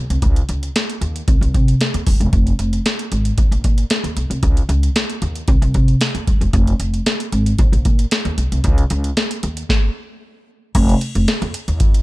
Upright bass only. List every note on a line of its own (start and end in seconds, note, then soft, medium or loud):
0.10 0.19 C2 medium
0.22 0.40 C#2 medium
0.49 0.67 C#2 medium
1.01 1.19 D#2 medium
1.28 1.37 C2 loud
1.41 1.50 C2 medium
1.54 1.72 C3 loud
1.94 2.03 E2 medium
2.07 2.16 D#1 medium
2.20 2.29 E1 medium
2.33 2.51 F1 loud
2.59 2.77 F1 loud
3.12 3.30 G#1 loud
3.38 3.47 A#1 loud
3.52 3.60 A#1 medium
3.64 3.82 A#2 medium
4.04 4.13 D#2 medium
4.17 4.26 B1 medium
4.30 4.39 C2 medium
4.43 4.61 C#2 loud
4.69 4.87 C#2 loud
5.22 5.40 D#2 medium
5.48 5.58 C2 loud
5.62 5.71 C2 medium
5.75 5.93 C3 loud
6.15 6.23 E2 medium
6.27 6.37 D#1 medium
6.41 6.50 E1 medium
6.53 6.72 F1 loud
6.80 6.98 F1 loud
7.32 7.51 G#1 medium
7.59 7.69 A#1 loud
7.72 7.81 A#1 medium
7.85 8.04 A#2 loud
8.25 8.34 D#2 loud
8.38 8.47 B1 medium
8.52 8.60 C2 medium
8.64 8.82 C#2 loud
8.91 9.09 C#2 loud
9.43 9.61 D#2 loud
10.75 10.93 F1 loud
11.15 11.24 F1 loud
11.42 11.50 F2 loud
11.68 11.80 D#2 medium
11.80 11.98 F2 loud